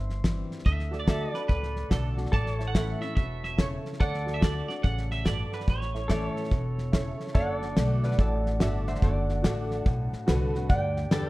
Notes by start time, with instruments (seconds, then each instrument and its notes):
Already playing: upright bass G1, steel-string acoustic guitar G2, pedal steel guitar C5 E5
0.10 snare
0.24 steel-string acoustic guitar E3 G3 C4 E4, kick, snare, hi-hat pedal
0.51 snare
0.59 snare
0.65 upright bass D2, steel-string acoustic guitar D3, clean electric guitar E5, kick, snare
0.79 snare
0.91 honky-tonk piano F#4 A4 D5, snare
1.00 clean electric guitar D5
1.07 steel-string acoustic guitar D3 A3 D4 F#4, honky-tonk piano F#4 A4 D5, pedal steel guitar A4 E5, kick, snare, hi-hat pedal
1.34 steel-string acoustic guitar D4 F#4, clean electric guitar B4, pedal steel guitar D5, snare
1.48 upright bass C#2, steel-string acoustic guitar A2, clean electric guitar B4, kick, snare
1.63 snare
1.76 snare
1.90 upright bass B1, steel-string acoustic guitar D3 A3 D4 F#4, honky-tonk piano F#4 A4 D5, clean electric guitar A4, kick, snare, hi-hat pedal
2.18 steel-string acoustic guitar D4 F#4, snare
2.26 snare
2.32 upright bass A1, steel-string acoustic guitar A2, pedal steel guitar A4 D5, clean electric guitar A5, kick, snare
2.46 snare
2.54 pedal steel guitar C#5
2.59 honky-tonk piano E4 A4 C#5, snare
2.67 clean electric guitar F#5
2.74 steel-string acoustic guitar E3 A3 C#4 E4, honky-tonk piano E4 A4 E5, kick, snare, hi-hat pedal
3.01 steel-string acoustic guitar C#4 E4, clean electric guitar E5, snare
3.15 upright bass E1, steel-string acoustic guitar B2, clean electric guitar E5, kick, snare
3.44 clean electric guitar E5, snare
3.57 steel-string acoustic guitar C#3, honky-tonk piano E4 A4 C#5, clean electric guitar C#5, kick, snare, hi-hat pedal
3.85 snare
3.93 snare
4.00 upright bass D2, steel-string acoustic guitar D3, pedal steel guitar A4 D5, clean electric guitar F#5, kick, snare
4.14 snare
4.26 honky-tonk piano F#4 A4 D5, snare
4.34 clean electric guitar E5
4.41 steel-string acoustic guitar D3 A3 D4 F#4, honky-tonk piano F#4 A4 D5, clean electric guitar D5, kick, snare, hi-hat pedal
4.68 steel-string acoustic guitar D4 F#4, clean electric guitar D5, snare
4.83 upright bass A1, steel-string acoustic guitar C#3, clean electric guitar F#5, kick, snare
4.98 snare
5.11 clean electric guitar E5, snare
5.25 steel-string acoustic guitar G2, honky-tonk piano F#4 A4 D5, clean electric guitar D5, kick, snare, hi-hat pedal
5.52 clean electric guitar B4, snare
5.60 snare
5.68 upright bass A1, steel-string acoustic guitar A2, clean electric guitar C#5, kick, snare
5.82 snare
5.94 honky-tonk piano E4 A4 C#5, snare
6.08 steel-string acoustic guitar E3 A3 C#4 E4, honky-tonk piano E4 A4 E5, pedal steel guitar A4 D5, kick, snare, hi-hat pedal
6.29 pedal steel guitar C#5
6.36 snare
6.44 snare
6.51 upright bass E1, steel-string acoustic guitar B2, kick, snare
6.78 snare
6.92 steel-string acoustic guitar C#3, honky-tonk piano E4 A4 C#5, kick, snare, hi-hat pedal
7.20 snare
7.27 snare
7.35 upright bass F#1, steel-string acoustic guitar D3, flute section D4 F#4 A4 F#5, pedal steel guitar A4 C#5, resonator guitar played with a steel bar D5 F#5, kick, snare
7.55 pedal steel guitar D5
7.62 snare
7.76 upright bass B1, steel-string acoustic guitar D3 A3 D4 F#4, honky-tonk piano F#4 A4 D5, snare, hi-hat pedal
8.04 resonator guitar played with a steel bar B4 D5, snare
8.11 snare
8.19 upright bass A1, steel-string acoustic guitar A2, resonator guitar played with a steel bar A4 D5, kick, snare
8.46 snare
8.60 upright bass G1, steel-string acoustic guitar D3 A3 D4 F#4, honky-tonk piano F#4 A4 D5, resonator guitar played with a steel bar A4 E5, snare, hi-hat pedal
8.87 resonator guitar played with a steel bar C5 E5, snare
8.95 snare
9.02 upright bass F#1, steel-string acoustic guitar D3, resonator guitar played with a steel bar A4 D5, kick, snare
9.29 snare
9.42 upright bass A1, steel-string acoustic guitar D3 A3 D4 F#4, honky-tonk piano F#4 A4 D5, snare, hi-hat pedal
9.71 snare
9.86 upright bass B1, steel-string acoustic guitar A2, kick, snare
10.13 muted upright bass stroke, snare
10.27 upright bass C2, steel-string acoustic guitar D3 A3 D4 F#4, honky-tonk piano F#4 A4 B4, snare, hi-hat pedal
10.55 steel-string acoustic guitar D4 F#4, snare
10.69 upright bass D2, steel-string acoustic guitar G2, flute section G4 B4 G5, resonator guitar played with a steel bar D5 G5, kick, snare
10.97 snare
11.11 upright bass E2, steel-string acoustic guitar D3 G3 B3 G4, honky-tonk piano G4 B4 D5, pedal steel guitar A4 D5, snare, hi-hat pedal